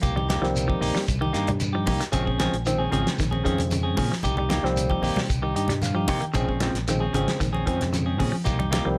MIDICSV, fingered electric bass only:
0, 0, Header, 1, 3, 480
1, 0, Start_track
1, 0, Tempo, 527241
1, 19, Time_signature, 4, 2, 24, 8
1, 8175, End_track
2, 0, Start_track
2, 0, Title_t, "Fingered electric bass"
2, 0, Program_c, 0, 33
2, 28, Note_on_c, 0, 36, 100
2, 335, Note_off_c, 0, 36, 0
2, 379, Note_on_c, 0, 36, 75
2, 685, Note_off_c, 0, 36, 0
2, 737, Note_on_c, 0, 34, 90
2, 844, Note_off_c, 0, 34, 0
2, 988, Note_on_c, 0, 36, 82
2, 1190, Note_off_c, 0, 36, 0
2, 1225, Note_on_c, 0, 43, 90
2, 1708, Note_on_c, 0, 36, 92
2, 1722, Note_off_c, 0, 43, 0
2, 1810, Note_off_c, 0, 36, 0
2, 1948, Note_on_c, 0, 34, 94
2, 2255, Note_off_c, 0, 34, 0
2, 2305, Note_on_c, 0, 34, 75
2, 2609, Note_off_c, 0, 34, 0
2, 2666, Note_on_c, 0, 32, 83
2, 2769, Note_off_c, 0, 32, 0
2, 2912, Note_on_c, 0, 34, 73
2, 3112, Note_off_c, 0, 34, 0
2, 3149, Note_on_c, 0, 41, 89
2, 3630, Note_off_c, 0, 41, 0
2, 3630, Note_on_c, 0, 46, 91
2, 3731, Note_off_c, 0, 46, 0
2, 3872, Note_on_c, 0, 36, 104
2, 4177, Note_off_c, 0, 36, 0
2, 4215, Note_on_c, 0, 36, 70
2, 4523, Note_off_c, 0, 36, 0
2, 4569, Note_on_c, 0, 34, 89
2, 4679, Note_off_c, 0, 34, 0
2, 4824, Note_on_c, 0, 36, 89
2, 5027, Note_off_c, 0, 36, 0
2, 5060, Note_on_c, 0, 43, 91
2, 5542, Note_off_c, 0, 43, 0
2, 5542, Note_on_c, 0, 48, 98
2, 5646, Note_off_c, 0, 48, 0
2, 5782, Note_on_c, 0, 34, 98
2, 6091, Note_off_c, 0, 34, 0
2, 6137, Note_on_c, 0, 34, 71
2, 6444, Note_off_c, 0, 34, 0
2, 6496, Note_on_c, 0, 32, 92
2, 6603, Note_off_c, 0, 32, 0
2, 6748, Note_on_c, 0, 34, 78
2, 6949, Note_off_c, 0, 34, 0
2, 6986, Note_on_c, 0, 41, 79
2, 7464, Note_off_c, 0, 41, 0
2, 7464, Note_on_c, 0, 46, 97
2, 7567, Note_off_c, 0, 46, 0
2, 7711, Note_on_c, 0, 36, 94
2, 8016, Note_off_c, 0, 36, 0
2, 8069, Note_on_c, 0, 36, 75
2, 8175, Note_off_c, 0, 36, 0
2, 8175, End_track
3, 0, Start_track
3, 0, Title_t, "Muted fingered electric bass strokes"
3, 872, Note_on_c, 9, 29, 29
3, 963, Note_off_c, 9, 29, 0
3, 2779, Note_on_c, 9, 29, 34
3, 2870, Note_off_c, 9, 29, 0
3, 6626, Note_on_c, 9, 29, 30
3, 6717, Note_off_c, 9, 29, 0
3, 8175, End_track
0, 0, End_of_file